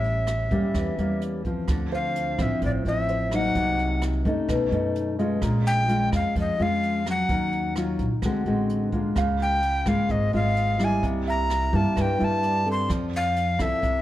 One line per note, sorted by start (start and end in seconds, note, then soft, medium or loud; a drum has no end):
0.00 0.47 A1 medium
0.00 0.73 A2 soft
0.00 0.48 G3 soft
0.00 0.48 C#4 medium
0.00 1.22 E5 medium
0.00 closed hi-hat soft
0.27 cross-stick medium
0.27 closed hi-hat soft
0.51 0.62 E2 medium
0.51 0.94 G3 medium
0.51 0.94 A#3 medium
0.51 0.95 C#4 medium
0.51 kick soft
0.51 closed hi-hat soft
0.74 0.96 E2 medium
0.74 1.66 E3 soft
0.74 kick soft
0.74 cross-stick soft
0.74 closed hi-hat soft
0.98 1.64 E2 medium
0.98 1.41 G3 medium
0.98 1.41 A#3 medium
0.98 1.42 C#4 medium
0.98 closed hi-hat soft
1.21 closed hi-hat soft
1.45 2.35 F3 soft
1.45 2.35 C4 soft
1.45 kick soft
1.45 closed hi-hat soft
1.68 2.34 D2 medium
1.68 2.60 D3 soft
1.68 kick medium
1.68 cross-stick medium
1.68 closed hi-hat soft
1.91 3.08 C5 soft
1.91 2.44 F5 medium
1.91 closed hi-hat soft
2.16 closed hi-hat soft
2.39 2.49 A1 medium
2.39 2.82 F3 medium
2.39 2.82 C4 medium
2.39 2.82 E4 medium
2.39 2.63 E5 medium
2.39 kick soft
2.39 cross-stick medium
2.39 closed hi-hat soft
2.62 2.83 A1 medium
2.62 3.54 A2 soft
2.62 2.71 D5 medium
2.62 kick soft
2.62 closed hi-hat soft
2.85 3.51 A1 medium
2.85 3.28 F3 medium
2.85 3.29 C4 medium
2.85 3.29 E4 medium
2.85 3.37 E5 medium
2.85 closed hi-hat soft
3.08 3.75 C5 soft
3.08 closed hi-hat soft
3.31 4.22 F#3 soft
3.31 4.22 A#3 medium
3.31 4.22 D#4 medium
3.31 4.04 F#5 medium
3.31 cross-stick medium
3.31 closed hi-hat soft
3.55 4.21 C2 medium
3.55 4.47 C3 soft
3.55 kick medium
3.55 closed hi-hat soft
3.79 closed hi-hat soft
4.02 cross-stick medium
4.02 closed hi-hat soft
4.25 4.36 F#2 medium
4.25 4.68 A3 medium
4.25 4.69 C#4 medium
4.25 4.69 D#4 medium
4.25 kick medium
4.25 closed hi-hat soft
4.49 4.70 B1 medium
4.49 5.40 B2 soft
4.49 kick soft
4.49 cross-stick medium
4.49 closed hi-hat soft
4.71 5.38 F#2 medium
4.71 5.15 A3 medium
4.71 5.15 C#4 medium
4.71 5.15 D#4 medium
4.71 closed hi-hat soft
4.95 closed hi-hat soft
5.19 5.87 G#3 medium
5.19 5.87 C#4 soft
5.19 5.88 F4 medium
5.19 5.62 D#5 soft
5.19 closed hi-hat soft
5.42 6.08 A#1 medium
5.42 6.33 A#2 medium
5.42 kick medium
5.42 cross-stick medium
5.42 closed hi-hat soft
5.65 6.10 G5 loud
5.65 closed hi-hat soft
5.88 6.55 G#3 soft
5.88 6.55 C#4 medium
5.88 6.55 F4 medium
5.88 closed hi-hat soft
6.12 6.23 F2 medium
6.12 6.36 F5 medium
6.12 kick soft
6.12 cross-stick medium
6.12 closed hi-hat soft
6.36 6.57 F2 medium
6.36 7.27 F3 soft
6.36 kick soft
6.36 closed hi-hat soft
6.40 6.64 D#5 medium
6.59 7.25 F2 medium
6.59 7.02 G#3 medium
6.59 7.03 C#4 medium
6.59 7.03 F4 medium
6.59 7.07 F5 medium
6.59 closed hi-hat soft
6.83 closed hi-hat soft
7.06 7.73 F#3 medium
7.06 7.73 C#4 soft
7.06 cross-stick medium
7.06 closed hi-hat soft
7.10 7.74 F#5 medium
7.29 7.95 D#2 medium
7.29 8.21 D#3 soft
7.29 kick medium
7.29 closed hi-hat soft
7.52 closed hi-hat soft
7.76 8.08 F#3 soft
7.76 8.08 C#4 soft
7.76 8.08 F4 medium
7.76 cross-stick medium
7.76 closed hi-hat soft
7.99 8.10 A#1 medium
7.99 kick medium
7.99 closed hi-hat soft
8.22 8.44 D2 medium
8.22 9.15 D3 soft
8.22 8.43 G#3 soft
8.22 8.43 C4 soft
8.22 8.44 F#4 soft
8.22 kick soft
8.22 cross-stick medium
8.22 closed hi-hat soft
8.46 9.12 A1 medium
8.46 8.90 G#3 medium
8.46 8.90 C4 soft
8.46 8.90 F#4 medium
8.46 closed hi-hat soft
8.69 closed hi-hat soft
8.92 9.59 G#3 soft
8.92 9.59 A#3 medium
8.92 9.60 F4 medium
8.92 kick soft
8.92 closed hi-hat soft
9.15 9.82 C#2 medium
9.15 10.07 C#3 soft
9.15 10.40 F5 soft
9.15 kick medium
9.15 cross-stick medium
9.15 closed hi-hat soft
9.40 9.90 G5 medium
9.40 closed hi-hat soft
9.62 closed hi-hat soft
9.86 9.97 G#1 medium
9.86 10.30 G#3 medium
9.86 10.30 A#3 medium
9.86 10.30 F4 medium
9.86 10.13 F5 medium
9.86 kick medium
9.86 cross-stick medium
9.86 closed hi-hat soft
10.09 10.31 G#1 medium
10.09 11.01 G#2 soft
10.09 10.34 D#5 medium
10.09 kick medium
10.09 closed hi-hat soft
10.33 11.00 G#1 medium
10.33 10.76 G#3 medium
10.33 10.76 A#3 medium
10.33 10.77 F4 medium
10.33 11.23 D#5 soft
10.33 10.86 F5 medium
10.33 closed hi-hat soft
10.56 closed hi-hat soft
10.79 11.69 G3 medium
10.79 11.69 A#3 medium
10.79 11.69 E4 medium
10.79 cross-stick soft
10.79 closed hi-hat soft
10.84 11.05 G#5 medium
11.02 11.69 C2 medium
11.02 11.94 C3 soft
11.02 kick medium
11.02 closed hi-hat soft
11.27 12.50 E5 soft
11.27 11.77 A#5 medium
11.27 closed hi-hat soft
11.50 cross-stick medium
11.50 closed hi-hat soft
11.73 11.84 G2 medium
11.73 12.16 G3 medium
11.73 12.16 A#3 medium
11.73 12.17 E4 medium
11.73 12.03 A5 medium
11.73 kick soft
11.73 closed hi-hat soft
11.96 12.87 G2 soft
11.96 12.19 G2 medium
11.96 kick soft
11.96 cross-stick soft
11.96 closed hi-hat soft
12.01 12.26 G5 medium
12.19 12.87 G2 medium
12.19 12.62 G3 medium
12.19 12.63 A#3 medium
12.19 12.63 E4 medium
12.19 closed hi-hat soft
12.24 12.69 A5 medium
12.43 13.09 D5 soft
12.43 closed hi-hat soft
12.66 13.56 C4 soft
12.66 13.56 A4 medium
12.66 closed hi-hat soft
12.71 12.91 C6 medium
12.89 13.56 F2 medium
12.89 13.80 F3 soft
12.89 kick medium
12.89 cross-stick medium
12.89 closed hi-hat soft
13.13 13.63 F5 loud
13.13 closed hi-hat soft
13.36 closed hi-hat soft
13.59 13.71 C2 medium
13.59 14.02 C4 medium
13.59 14.02 E4 medium
13.59 14.02 A4 medium
13.59 14.02 E5 medium
13.59 kick soft
13.59 cross-stick medium
13.59 closed hi-hat soft
13.82 14.02 C2 medium
13.82 14.02 C3 soft
13.82 kick medium
13.82 closed hi-hat soft